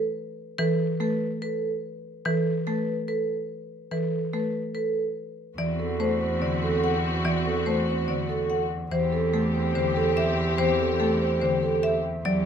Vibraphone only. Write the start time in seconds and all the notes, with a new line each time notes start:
0.59 A4
1.00 B4
1.42 A4
2.25 A4
2.67 B4
3.08 A4
3.92 A4
4.34 B4
4.75 A4
5.79 A4
6.21 C5
6.63 A4
7.46 A4
7.88 C5
8.29 A4
9.13 A4
9.54 C5
9.96 A4
10.80 A4
11.21 C5
11.63 A4